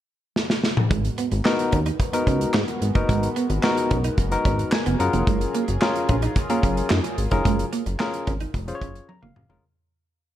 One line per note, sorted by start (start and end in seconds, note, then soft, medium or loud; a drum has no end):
0.36 snare medium
0.50 snare medium
0.64 snare medium
0.77 mid tom loud
0.91 1.10 G#1 loud
0.91 0.99 G#3 medium
0.91 4.96 G#3 medium
0.91 4.96 B3 medium
0.91 4.96 F#4 medium
0.91 9.60 A#4 medium
0.91 kick loud
0.91 closed hi-hat medium
1.05 closed hi-hat medium
1.18 1.27 B3 medium
1.18 closed hi-hat medium
1.31 1.41 G#1 loud
1.31 muted clean electric guitar stroke soft
1.31 closed hi-hat soft
1.45 1.78 B3 medium
1.45 1.78 D#4 medium
1.45 1.78 F#4 medium
1.45 1.78 A#4 loud
1.45 muted clean electric guitar stroke soft
1.45 snare loud
1.45 clap medium
1.59 closed hi-hat medium
1.72 1.92 D#2 loud
1.72 1.81 C#4 medium
1.72 kick medium
1.72 closed hi-hat medium
1.86 1.95 D#4 medium
1.86 closed hi-hat medium
2.00 muted clean electric guitar stroke soft
2.00 kick medium
2.00 closed hi-hat medium
2.13 2.53 B3 medium
2.13 2.22 B3 medium
2.13 2.53 D#4 medium
2.13 2.53 F#4 medium
2.13 2.53 A#4 medium
2.13 closed hi-hat medium
2.27 2.46 C#2 medium
2.27 2.36 C#4 medium
2.27 kick medium
2.27 closed hi-hat medium
2.41 closed hi-hat medium
2.54 2.64 G#2 loud
2.54 2.63 D#4 medium
2.54 snare loud
2.54 clap medium
2.68 muted clean electric guitar stroke soft
2.68 closed hi-hat soft
2.82 2.91 G#1 medium
2.82 closed hi-hat medium
2.95 3.05 F#1 medium
2.95 3.28 B3 medium
2.95 3.04 D#4 medium
2.95 3.28 D#4 medium
2.95 3.28 F#4 medium
2.95 3.28 A#4 medium
2.95 kick medium
2.95 closed hi-hat medium
3.09 3.28 G#1 loud
3.09 3.18 G#3 medium
3.09 kick loud
3.09 closed hi-hat medium
3.23 closed hi-hat medium
3.36 3.45 B3 medium
3.36 closed hi-hat medium
3.50 3.59 G#1 loud
3.50 muted clean electric guitar stroke soft
3.50 closed hi-hat soft
3.63 3.96 B3 medium
3.63 3.96 D#4 medium
3.63 3.96 F#4 medium
3.63 3.97 A#4 loud
3.63 muted clean electric guitar stroke soft
3.63 snare loud
3.63 clap medium
3.77 closed hi-hat medium
3.91 4.10 B1 medium
3.91 4.00 C#4 medium
3.91 kick loud
3.91 closed hi-hat medium
4.04 4.13 D#4 medium
4.04 closed hi-hat medium
4.18 4.37 F#1 medium
4.18 kick medium
4.18 closed hi-hat medium
4.31 4.71 B3 medium
4.31 4.71 D#4 medium
4.31 4.71 F#4 medium
4.31 4.71 A#4 loud
4.31 closed hi-hat medium
4.45 4.64 G#1 medium
4.45 4.54 C#4 medium
4.45 kick medium
4.45 closed hi-hat medium
4.59 closed hi-hat medium
4.72 4.98 G#5 medium
4.72 snare loud
4.72 clap medium
4.86 4.96 F#1 medium
4.86 4.95 B3 medium
4.86 closed hi-hat soft
4.99 5.09 F#1 loud
4.99 9.60 F#3 medium
4.99 5.65 C#4 medium
4.99 5.65 F4 medium
4.99 9.60 F4 medium
4.99 5.65 G#4 medium
4.99 9.60 G#4 medium
4.99 5.65 A#4 medium
4.99 5.25 F#5 medium
4.99 muted clean electric guitar stroke soft
4.99 closed hi-hat medium
5.13 5.23 F1 loud
5.13 5.22 A#3 medium
5.13 closed hi-hat soft
5.27 5.46 F#1 loud
5.27 5.36 G#3 medium
5.27 kick loud
5.27 closed hi-hat medium
5.41 closed hi-hat medium
5.54 5.63 A#3 medium
5.54 closed hi-hat medium
5.68 5.78 F#1 loud
5.68 muted clean electric guitar stroke soft
5.68 closed hi-hat medium
5.81 6.15 C#4 medium
5.81 6.15 F4 medium
5.81 6.15 G#4 medium
5.81 6.15 A#4 medium
5.81 muted clean electric guitar stroke soft
5.81 snare loud
5.81 clap medium
5.95 closed hi-hat medium
6.09 6.28 A#1 medium
6.09 6.18 C#4 medium
6.09 kick medium
6.09 closed hi-hat medium
6.22 6.31 D#4 medium
6.22 closed hi-hat medium
6.36 muted clean electric guitar stroke soft
6.36 kick medium
6.36 closed hi-hat medium
6.50 6.59 A#3 medium
6.50 6.89 C#4 medium
6.50 6.89 F4 medium
6.50 6.89 G#4 medium
6.50 6.90 A#4 medium
6.50 closed hi-hat medium
6.63 6.82 F#1 medium
6.63 6.72 C#4 medium
6.63 kick medium
6.63 closed hi-hat medium
6.77 closed hi-hat medium
6.90 7.00 F#2 loud
6.90 7.00 D#4 medium
6.90 snare loud
6.90 clap medium
7.04 muted clean electric guitar stroke soft
7.04 closed hi-hat medium
7.18 7.28 G#1 medium
7.18 closed hi-hat medium
7.31 7.41 F1 medium
7.31 7.64 C#4 medium
7.31 7.40 D#4 medium
7.31 7.64 F4 medium
7.31 7.65 G#4 medium
7.31 7.65 A#4 loud
7.31 kick loud
7.31 closed hi-hat soft
7.45 7.64 F#1 loud
7.45 7.54 G#3 medium
7.45 kick loud
7.45 closed hi-hat medium
7.59 closed hi-hat medium
7.73 7.81 A#3 medium
7.73 closed hi-hat medium
7.86 7.96 F#1 loud
7.86 muted clean electric guitar stroke soft
7.86 closed hi-hat soft
7.99 8.33 C#4 medium
7.99 8.33 F4 medium
7.99 8.33 G#4 medium
7.99 8.33 A#4 medium
7.99 muted clean electric guitar stroke soft
7.99 snare loud
7.99 clap medium
8.14 closed hi-hat medium
8.27 8.46 G#1 medium
8.27 8.36 C#4 medium
8.27 kick medium
8.27 closed hi-hat medium
8.40 8.50 D#4 medium
8.40 closed hi-hat medium
8.54 8.73 F1 medium
8.54 kick medium
8.54 closed hi-hat medium
8.68 9.07 C#4 medium
8.68 9.07 F4 medium
8.68 9.08 G#4 medium
8.68 8.75 C5 medium
8.68 closed hi-hat medium
8.75 9.11 C#5 medium
8.81 9.01 F#1 medium
8.81 8.91 C#4 medium
8.81 kick medium
8.81 closed hi-hat medium
8.95 closed hi-hat medium
9.09 9.21 A#5 medium
9.09 high tom medium
9.22 9.32 F1 loud
9.22 9.31 A#3 medium
9.22 9.60 F5 medium
9.22 mid tom medium
9.36 9.46 F#1 medium
9.36 muted clean electric guitar stroke soft
9.36 mid tom medium
9.49 9.59 F1 medium
9.49 9.59 G#3 medium
9.49 9.63 C#4 medium
9.49 9.63 F4 medium
9.49 9.63 G#4 medium
9.49 9.64 A#4 medium
9.49 floor tom loud